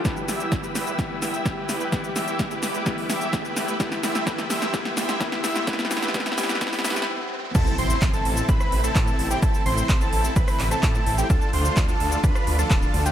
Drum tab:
CC |--------------------------------|--------------------------------|--------------------------------|--------------------------------|
HH |x---o-x-x-x-o-x-x---o-x-x---o-x-|x-x-o-x-x-x-o-x-x-o-o-x-x---o-x-|x---o-x-x-x-o-x-x---o-x-x---o-x-|x-x-o-x-x-x-o-x-x-o-o-x---------|
SH |x-x-x-x-x-x-x-x-x---x-x-x---x-x-|x-x-x-x-x-x-x-x-x---x-x-x-x-x-x-|x-x-x-x-x-x-x-x-x---x-x-x---x-x-|x-x-x-x-x-x-x-x-x-x-x-x---------|
CP |--------------------------------|--------------------------------|--------------------------------|--------------------------------|
SD |o---o---o---o---o---o---o---o---|o---o---o---o---o---o---o---o---|o-o-o-o-o-o-o-o-o-o-o-o-o-o-o-o-|oooooooooooooooooooooooo--------|
BD |o-------o-------o-------o-------|o-------o-------o-------o-------|o-------o-------o-------o-------|o-------o-------o---------------|

CC |x-------------------------------|--------------------------------|--------------------------------|
HH |x---o-x-x-x-o-x-x---o-x-x---o-x-|x-x-o-x-x-x-o-x-x-o-o-x-x---o-x-|x---o-x-x-x-o-x-x---o-x-x---o-x-|
SH |x-x---x-x-x---x-x-x---x-x-x---x-|x-x---x-x-x---x-x-x---x-x-x---x-|x-x---x-x-x---x-x-x---x-x-x---x-|
CP |--------x---------------x-------|--------x-----------x---x-------|--------x---------------x-------|
SD |------------------r---r---------|------------------r---r---------|------------------r---r---------|
BD |o-------o-------o-------o-------|o-------o-------o-------o-------|o-------o-------o-------o-------|